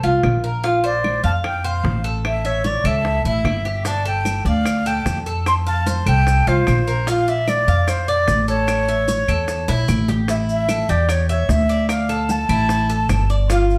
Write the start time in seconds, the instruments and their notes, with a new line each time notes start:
0.03 upright bass C2, cuban tres F4
0.23 upright bass A#1, high bongo, low bongo, claves
0.44 cuban tres A#4, high bongo
0.64 cuban tres F4, high bongo
0.84 cuban tres C5, flute D5
1.04 high bongo, claves
1.24 upright bass F2, cuban tres F5, flute A5
1.44 flute G5, high bongo, claves
1.64 cuban tres C5, flute F5
1.84 upright bass A1, high bongo, low bongo
2.04 cuban tres A4
2.25 flute E5, high bongo, claves
2.45 flute C#5, cuban tres E5, high bongo
2.64 cuban tres C#5, flute D5, high bongo
2.84 upright bass C#2, cuban tres A4, flute E5, high bongo, claves
3.05 high bongo
3.25 upright bass A1, cuban tres E4, flute E5
3.44 upright bass G1, high bongo, low bongo, claves
3.65 cuban tres G4, high bongo
3.85 cuban tres D4, flute A5, high bongo, maracas
4.05 cuban tres A4, flute G5, maracas
4.25 high bongo, claves, maracas
4.45 upright bass D2, cuban tres D5, flute F5, maracas
4.66 high bongo, claves, maracas
4.86 cuban tres A4, flute G5, maracas
5.05 upright bass F2, high bongo, low bongo, maracas
5.26 cuban tres A4, maracas
5.46 flute C6, high bongo, claves, maracas
5.66 cuban tres F5, flute A5, high bongo, maracas
5.86 cuban tres C5, high bongo, maracas
6.06 upright bass C2, cuban tres A4, flute G5, high bongo, claves, maracas
6.27 high bongo, maracas
6.47 upright bass C2, cuban tres F4, flute C5, maracas
6.67 upright bass A#1, high bongo, low bongo, claves, maracas
6.87 cuban tres A#4, high bongo, maracas
7.07 cuban tres F4, flute F5, high bongo, maracas
7.28 cuban tres D5, flute E5, maracas
7.48 flute D5, high bongo, claves, maracas
7.68 upright bass F2, cuban tres F5, maracas
7.88 flute C5, high bongo, claves, maracas
8.08 cuban tres D5, flute D5, maracas
8.28 upright bass A1, high bongo, low bongo, maracas
8.48 cuban tres A4, flute C#5, maracas
8.68 high bongo, claves, maracas
8.88 cuban tres E5, high bongo, maracas
9.08 cuban tres C#5, high bongo, maracas
9.28 upright bass E2, cuban tres A4, high bongo, claves, maracas
9.48 high bongo, maracas
9.68 upright bass A#1, cuban tres E4, high bongo, maracas
9.88 upright bass A1, low bongo, claves, maracas
10.08 cuban tres G4, low bongo, maracas
10.28 cuban tres E4, flute E5, high bongo, maracas
10.49 flute E5, maracas
10.69 cuban tres A4, high bongo, claves, maracas
10.89 upright bass E2, cuban tres G4, flute D5, maracas
11.09 flute C#5, high bongo, claves, maracas
11.29 flute C#5, cuban tres E5, maracas
11.49 upright bass D2, flute E5, high bongo, low bongo, maracas
11.69 cuban tres D5, maracas
11.89 flute F5, high bongo, claves, maracas
12.09 cuban tres A4, high bongo, maracas
12.29 flute A5, high bongo, maracas
12.49 upright bass A1, cuban tres E4, high bongo, claves, maracas
12.69 high bongo, maracas
12.90 cuban tres A4, maracas
13.09 upright bass G1, high bongo, low bongo, claves, maracas
13.30 cuban tres D5, high bongo, maracas
13.50 cuban tres F4, flute F5, high bongo, maracas
13.70 flute F5, maracas